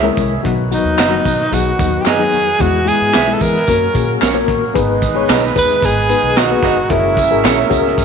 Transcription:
Already playing: tonewheel organ E3 G#3 C#4
0.03 reed electric piano G#3 C#4 E4 A#4
0.17 upright bass C2, kick, closed hi-hat, tambourine
0.43 upright bass B1, tonewheel organ D#3 F#3 B3, reed electric piano F#3 B3 D#4 F#4, kick, closed hi-hat
0.71 reed electric piano F#3 B3 D#4 F#4, tenor saxophone D#4, closed hi-hat, tambourine
0.84 upright bass D#2
0.98 upright bass F#1, clean electric guitar D#4 F#4 B4 D#5, snare, clap, closed hi-hat, tambourine
1.10 reed electric piano F#3 B3 D#4 F#4
1.25 upright bass B2, kick, closed hi-hat, tambourine
1.40 snare
1.52 upright bass B1, reed electric piano F#3 B3 D#4 G#4, tenor saxophone F#4, closed hi-hat, tambourine
1.78 upright bass D#2, reed electric piano F#3 B3 D#4 F#4, kick, closed hi-hat, tambourine
2.01 tenor saxophone G4
2.05 upright bass F#2, clean electric guitar D#4 F#4 B4 D#5, tenor saxophone G#4, snare, clap, closed hi-hat, tambourine
2.19 reed electric piano F#3 B3 D#4 G#4
2.32 upright bass F2, open hi-hat, tambourine
2.58 upright bass E2, tonewheel organ E3 G#3 B3, reed electric piano G#3 B3 E4 G#4, tenor saxophone F#4, kick, closed hi-hat, tambourine
2.85 reed electric piano G#3 B3 E4 G#4, tenor saxophone G#4, closed hi-hat, tambourine
3.01 upright bass G#2
3.13 upright bass B1, clean electric guitar E4 G#4 B4 E5, snare, clap, closed hi-hat, tambourine
3.27 reed electric piano G#3 B3 E4 G#4, snare
3.33 tenor saxophone A4
3.41 upright bass E3, tenor saxophone A#4, kick, closed hi-hat, tambourine
3.56 snare
3.67 upright bass F#2, tonewheel organ F#3 A#3 C#4, reed electric piano A#3 C#4 F#4 A#4, kick, closed hi-hat, tambourine
3.94 upright bass A#2, reed electric piano A#3 C#4 F#4 G#4, kick, closed hi-hat, tambourine
4.21 upright bass A#1, clean electric guitar C#4 F#4 A#4 C#5, snare, clap, closed hi-hat, tambourine
4.34 reed electric piano A#3 C#4 F#4 A#4
4.48 upright bass A1, kick, closed hi-hat
4.74 upright bass G#1, tonewheel organ D#3 G#3 B3, horn section G#3 D#4 B4, reed electric piano B3 D#4 G#4 B4, kick, closed hi-hat, tambourine
5.02 kick, closed hi-hat, tambourine
5.14 upright bass A#1, reed electric piano B3 D#4 G#4 C#5
5.28 upright bass B1, clean electric guitar D#4 G#4 B4 D#5, snare, clap, closed hi-hat, tambourine
5.43 snare
5.55 upright bass D#2, reed electric piano B3 D#4 G#4 B4, tenor saxophone B4, kick, closed hi-hat, tambourine
5.71 snare
5.82 upright bass G#1, tenor saxophone G#4, kick, closed hi-hat, tambourine
6.09 reed electric piano B3 D#4 G#4 B4, closed hi-hat, tambourine
6.22 upright bass B1
6.36 clean electric guitar D#4 G#4 B4 D#5, tenor saxophone F#4, snare, clap, closed hi-hat, tambourine
6.51 reed electric piano B3 D#4 G#4 B4
6.62 upright bass G1, clean electric guitar D#4 G#4 B4 D#5, kick, closed hi-hat, tambourine
6.88 upright bass F#1, tonewheel organ F#3 A#3, horn section C#4 A#4 E5, reed electric piano C#4 F#4 G#4 A#4, tenor saxophone E4, kick, closed hi-hat
7.17 kick, closed hi-hat, tambourine
7.30 upright bass G#1, reed electric piano C#4 F#4 G#4 A#4
7.44 upright bass A#1, clean electric guitar A#3 C#4 G#4 C#5, snare, clap, closed hi-hat, tambourine
7.70 upright bass C#2, reed electric piano C#4 F#4 G#4 A#4, kick, closed hi-hat, tambourine
7.86 snare
7.98 upright bass F#2, kick, closed hi-hat, tambourine

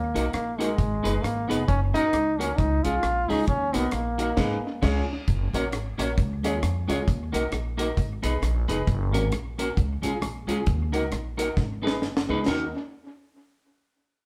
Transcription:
Already playing: upright bass D#2, trombone A#3
0.14 upright bass B1, clean electric guitar A#3 D#4 F#4 A#4, upright piano D#4 F#4 A#4, closed hi-hat
0.33 upright bass A#1, trombone A#3, cross-stick, closed hi-hat
0.59 trombone G#3, clean electric guitar A#3 D#4 F#4 A#4, upright piano D#4 F#4 A#4, closed hi-hat
0.78 upright bass G#1, kick, closed hi-hat
1.03 upright bass F#1, clean electric guitar B3 D#4 G#4 B4, upright piano D#4 G#4 B4, closed hi-hat
1.22 upright bass G#1, trombone A#3, cross-stick, closed hi-hat
1.48 upright bass F1, clean electric guitar B3 D#4 G#4 B4, trombone B3, upright piano D#4 G#4 B4, closed hi-hat
1.68 upright bass F#1, trombone C#4, kick, closed hi-hat
1.93 upright bass A#1, clean electric guitar A#3 C#4 F#4 A#4, upright piano C#4 F#4 A#4, trombone D#4, closed hi-hat
2.13 upright bass C#2, cross-stick, closed hi-hat
2.39 clean electric guitar A#3 C#4 F#4 A#4, upright piano C#4 F#4 A#4, trombone C#4, closed hi-hat
2.57 upright bass C#2, trombone D#4, kick, closed hi-hat
2.83 upright bass B1, clean electric guitar G#3 C#4 F4 G#4, upright piano C#4 F4 G#4, trombone F4, closed hi-hat
3.03 upright bass A#1, cross-stick, closed hi-hat
3.28 upright bass C#2, clean electric guitar G#3 C#4 F4 G#4, upright piano C#4 F4 G#4, trombone D#4, open hi-hat
3.47 upright bass D#2, trombone C#4, kick, closed hi-hat
3.73 upright bass B1, clean electric guitar A#3 D#4 F#4 A#4, trombone B3, upright piano D#4 F#4 A#4, closed hi-hat
3.91 upright bass A#1, trombone A#3, cross-stick, closed hi-hat
4.18 clean electric guitar A#3 D#4 F#4 A#4, upright piano D#4 F#4 A#4, closed hi-hat
4.37 upright bass G#1, clean electric guitar G#3 B3 D#4 G#4, upright piano D#4 G#4 B4, kick, snare, crash
4.82 upright bass C#2, clean electric guitar G#3 C#4 F4 G#4, upright piano F4 G#4 C#5, kick, snare, crash
5.28 upright bass F#1, kick, closed hi-hat
5.53 upright bass A#1, clean electric guitar A#3 C#4 F#4 A#4, upright piano F#4 A#4 C#5, closed hi-hat
5.72 upright bass G#1, muted clean electric guitar stroke, cross-stick, closed hi-hat
5.98 upright bass A#1, clean electric guitar A#3 C#4 F#4 A#4, upright piano F#4 A#4 C#5, closed hi-hat
6.18 upright bass C#2, kick, closed hi-hat
6.43 upright bass D#2, clean electric guitar G#3 C#4 F4 G#4, upright piano F4 G#4 C#5, closed hi-hat
6.62 upright bass F2, muted clean electric guitar stroke, cross-stick, closed hi-hat
6.88 upright bass C#2, clean electric guitar G#3 C#4 F4 G#4, upright piano F4 G#4 C#5, closed hi-hat
7.08 upright bass D#2, kick, closed hi-hat
7.32 upright bass B1, clean electric guitar A#3 D#4 F#4 A#4, upright piano D#4 F#4 A#4, closed hi-hat
7.51 upright bass A#1, muted clean electric guitar stroke, cross-stick, closed hi-hat
7.77 clean electric guitar A#3 D#4 F#4 A#4, upright piano D#4 F#4 A#4, closed hi-hat
7.97 upright bass G#1, kick, closed hi-hat
8.23 upright bass B1, clean electric guitar B3 D#4 G#4 B4, upright piano D#4 G#4 B4, closed hi-hat
8.42 upright bass A#1, cross-stick, closed hi-hat
8.68 upright bass F1, clean electric guitar B3 D#4 G#4 B4, upright piano D#4 G#4 B4, closed hi-hat
8.87 upright bass F#1, kick, closed hi-hat
9.12 upright bass G#1, clean electric guitar A#3 C#4 F#4 A#4, upright piano C#4 F#4 A#4, closed hi-hat
9.32 upright bass A#1, muted clean electric guitar stroke, cross-stick, closed hi-hat
9.58 clean electric guitar A#3 C#4 F#4 A#4, upright piano C#4 F#4 A#4, closed hi-hat
9.77 upright bass C#2, kick, closed hi-hat
10.02 upright bass B1, clean electric guitar G#3 C#4 F4 G#4, upright piano C#4 F4 G#4, closed hi-hat
10.21 upright bass A#1, muted clean electric guitar stroke, cross-stick, closed hi-hat
10.47 upright bass C#2, clean electric guitar G#3 C#4 F4 G#4, upright piano C#4 F4 G#4, closed hi-hat
10.66 upright bass D#2, kick, closed hi-hat
10.92 upright bass C#2, clean electric guitar A#3 D#4 F#4 A#4, upright piano D#4 F#4 A#4, closed hi-hat
11.11 upright bass A#1, muted clean electric guitar stroke, cross-stick, closed hi-hat
11.37 clean electric guitar A#3 D#4 F#4 A#4, upright piano D#4 F#4 A#4, closed hi-hat
11.57 upright bass G#1, kick, snare
11.82 clean electric guitar B3 D#4 G#4 B4, upright piano D#4 G#4 B4
11.87 snare
12.02 upright bass F#1, snare
12.17 snare
12.28 upright bass C#2, clean electric guitar B3 D#4 G#4 B4, upright piano D#4 G#4 B4
12.46 upright bass D#2, clean electric guitar A#3 D#4 F#4 A#4, upright piano D#4 F#4 A#4, snare, crash

